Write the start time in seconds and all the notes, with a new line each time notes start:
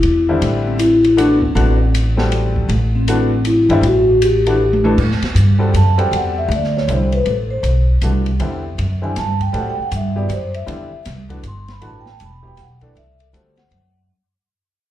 Already playing: E4
0.03 E2, ride
0.29 D3 G3 C4 E4
0.42 A1, ride
0.67 C4
0.79 E4, hi-hat pedal, ride
1.04 ride
1.17 E3 A3 D4 F#4, hi-hat pedal, ride
1.33 B3
1.42 C4, kick
1.55 A1 E3 A3 D4 F#4, ride
1.95 hi-hat pedal, ride
2.17 G3 C4 F#4 A4, snare
2.32 ride
2.56 kick
2.69 A1, ride
2.95 C4
3.08 E3 A3 D4 F#4, hi-hat pedal, ride
3.45 E4, hi-hat pedal, ride
3.69 G1 D3 G3 C4 E4, ride
3.81 A1, ride
3.86 F#4
4.22 G4, hi-hat pedal, ride
4.47 E3 A3 D4 F#4, ride
4.73 high tom
4.84 E3 A3 D4 A4, high tom
4.98 A2, kick, crash
5.11 snare
5.22 muted upright bass stroke, snare, ride
5.35 G2, hi-hat pedal, ride
5.59 G3 C4 F#4 A4
5.74 F#2 A5, hi-hat pedal, ride
5.98 G3 C4 F#4 A4 G5, ride
6.11 E2, ride
6.16 F#5
6.38 E5
6.48 D2, ride
6.55 D5
6.64 snare
6.77 C#5, snare
6.88 C2 D3 G3 C4 E4, hi-hat pedal, ride
6.92 C5
7.12 B4, ride
7.26 A1, ride
7.30 A4
7.50 C5
7.63 B1, hi-hat pedal, ride
8.01 C2 E3 A3 D4 F#4, hi-hat pedal, ride
8.26 ride
8.40 E2 D3 G3 C4 E4, ride
8.78 F#2, ride
9.02 D3 G3 C4 E4 G#5
9.16 G2 A5, snare, hi-hat pedal, ride
9.40 G5, kick, ride
9.53 A2 G3 C4 F#4 A4, ride
9.57 F#5
9.70 G5
9.79 F#5, muted upright bass stroke
9.92 G2, hi-hat pedal, ride
9.96 E5
10.16 F#3 B3 E4 G4 D5
10.29 F#2, hi-hat pedal, ride
10.33 C5
10.54 E5, ride
10.66 E2 D3 G3 C4 E4, ride
10.92 muted upright bass stroke
11.05 C2, snare, hi-hat pedal, ride
11.29 E3 A3 D4 F#4, kick, ride
11.43 G1, hi-hat pedal, ride
11.48 C6
11.68 B5, snare, ride
11.81 A1 E3 A3 D4 F#4, ride
11.87 A5
12.01 G5
12.06 snare
12.12 A5
12.20 E1, hi-hat pedal, ride
12.25 B5
12.43 F#3 B3 E4 G4, kick
12.47 G5
12.57 B1, snare, hi-hat pedal, ride
12.62 F#5
12.81 E3 A3 D4 A4 D5, kick, ride
12.95 C2 E5, ride
13.20 A4, ride
13.33 D2 G3 C4 F#4 A4 C5, hi-hat pedal, ride
13.57 F#5, snare, ride
13.71 F#2, ride